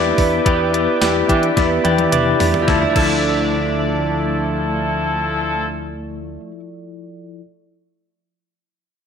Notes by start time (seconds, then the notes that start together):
Already playing: E2 B3 D4 E4 G4 B4 D5 E5 G5 D6
0.17 E2 B3 E4 G4 B4 D5, kick, open hi-hat
0.45 E2 B3 E4 G4 B4 D5, kick, closed hi-hat
0.73 B3 E4 G4 B4 D5, closed hi-hat
1.01 E2 E3 D4 E4 G4 B4 D5, snare, closed hi-hat, tambourine
1.28 E3 D4 E4 G4 B4 D5, kick, closed hi-hat
1.43 closed hi-hat
1.56 E2 B3 E4 G4 B4 D5, kick, snare, closed hi-hat
1.84 E2 E4 G4 B4 D5, closed hi-hat, high tom
1.98 closed hi-hat, high tom
2.11 E2 D4 E4 G4 B4 D5, closed hi-hat, mid tom
2.39 E2 B3 E4 G4 B4 D5, floor tom, open hi-hat
2.54 floor tom
2.62 F3 E4
2.67 D2 D3 F3 D4 E4 F4 A4 D5 E5, kick, snare
2.73 A3
2.82 E4
2.90 F3 E4
2.95 D2 F3 E4 A4 D5, kick, crash
3.01 A3
3.09 E4